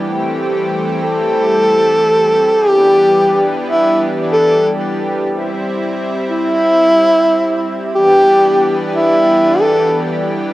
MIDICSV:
0, 0, Header, 1, 3, 480
1, 0, Start_track
1, 0, Tempo, 659341
1, 31, Time_signature, 4, 2, 24, 8
1, 7667, End_track
2, 0, Start_track
2, 0, Title_t, "Tenor saxophone"
2, 0, Program_c, 0, 66
2, 751, Note_on_c, 0, 69, 113
2, 1951, Note_on_c, 0, 67, 110
2, 1962, Note_off_c, 0, 69, 0
2, 2575, Note_off_c, 0, 67, 0
2, 2672, Note_on_c, 0, 64, 92
2, 2955, Note_off_c, 0, 64, 0
2, 3150, Note_on_c, 0, 69, 93
2, 3435, Note_off_c, 0, 69, 0
2, 4589, Note_on_c, 0, 64, 115
2, 5694, Note_off_c, 0, 64, 0
2, 5791, Note_on_c, 0, 67, 113
2, 6415, Note_off_c, 0, 67, 0
2, 6511, Note_on_c, 0, 64, 94
2, 6992, Note_on_c, 0, 69, 92
2, 7003, Note_off_c, 0, 64, 0
2, 7275, Note_off_c, 0, 69, 0
2, 7667, End_track
3, 0, Start_track
3, 0, Title_t, "Analog synth pad"
3, 0, Program_c, 1, 89
3, 0, Note_on_c, 1, 52, 84
3, 0, Note_on_c, 1, 55, 77
3, 0, Note_on_c, 1, 67, 94
3, 32, Note_on_c, 1, 57, 76
3, 32, Note_on_c, 1, 60, 78
3, 1922, Note_off_c, 1, 52, 0
3, 1922, Note_off_c, 1, 55, 0
3, 1932, Note_off_c, 1, 57, 0
3, 1933, Note_off_c, 1, 60, 0
3, 1951, Note_on_c, 1, 52, 83
3, 1952, Note_on_c, 1, 59, 77
3, 1953, Note_on_c, 1, 55, 76
3, 1953, Note_on_c, 1, 62, 80
3, 3842, Note_off_c, 1, 67, 0
3, 3852, Note_off_c, 1, 52, 0
3, 3852, Note_off_c, 1, 59, 0
3, 3853, Note_off_c, 1, 62, 0
3, 3871, Note_on_c, 1, 60, 77
3, 3872, Note_on_c, 1, 64, 90
3, 5763, Note_off_c, 1, 55, 0
3, 5772, Note_off_c, 1, 60, 0
3, 5772, Note_off_c, 1, 64, 0
3, 5790, Note_on_c, 1, 55, 74
3, 5790, Note_on_c, 1, 62, 75
3, 5790, Note_on_c, 1, 67, 92
3, 5791, Note_on_c, 1, 52, 84
3, 5791, Note_on_c, 1, 59, 75
3, 7667, Note_off_c, 1, 52, 0
3, 7667, Note_off_c, 1, 55, 0
3, 7667, Note_off_c, 1, 59, 0
3, 7667, Note_off_c, 1, 62, 0
3, 7667, Note_off_c, 1, 67, 0
3, 7667, End_track
0, 0, End_of_file